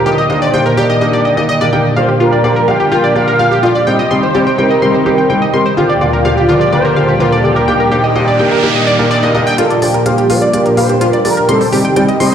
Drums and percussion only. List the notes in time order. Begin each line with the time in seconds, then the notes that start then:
9.58 closed hi-hat
9.70 closed hi-hat
9.82 open hi-hat
9.94 closed hi-hat
10.06 closed hi-hat
10.18 closed hi-hat
10.30 open hi-hat
10.42 closed hi-hat
10.54 closed hi-hat
10.66 closed hi-hat
10.77 open hi-hat
10.89 closed hi-hat
11.01 closed hi-hat
11.13 closed hi-hat
11.25 open hi-hat
11.37 closed hi-hat
11.49 closed hi-hat
11.61 open hi-hat
11.73 open hi-hat
11.85 closed hi-hat
11.96 closed hi-hat
12.09 closed hi-hat
12.20 open hi-hat